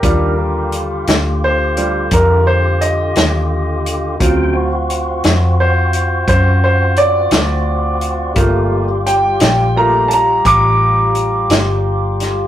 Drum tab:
HH |x-xx-xx-xx-x|x-xx-xx-xx-x|x-xx-xx-xx-x|
SD |---o-----o--|---o-----o--|---o-----o-o|
BD |o-----o-----|o-----o-----|o-----o-----|